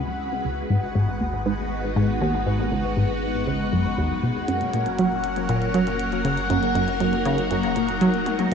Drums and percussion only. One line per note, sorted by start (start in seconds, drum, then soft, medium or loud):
4.48 closed hi-hat medium
4.61 closed hi-hat soft
4.74 closed hi-hat medium
4.74 high tom soft
4.86 closed hi-hat medium
4.99 closed hi-hat medium
5.24 closed hi-hat medium
5.36 closed hi-hat medium
5.49 closed hi-hat medium
5.62 closed hi-hat soft
5.74 closed hi-hat medium
5.87 closed hi-hat medium
6.00 closed hi-hat medium
6.12 closed hi-hat soft
6.25 closed hi-hat medium
6.37 closed hi-hat soft
6.50 closed hi-hat medium
6.63 closed hi-hat soft
6.75 closed hi-hat medium
6.88 closed hi-hat soft
7.00 closed hi-hat medium
7.13 closed hi-hat soft
7.26 closed hi-hat medium
7.38 closed hi-hat medium
7.51 closed hi-hat medium
7.63 closed hi-hat soft
7.76 closed hi-hat medium
7.89 closed hi-hat soft
8.01 closed hi-hat medium
8.14 closed hi-hat soft
8.26 closed hi-hat medium
8.26 high tom medium
8.39 closed hi-hat medium
8.39 high tom medium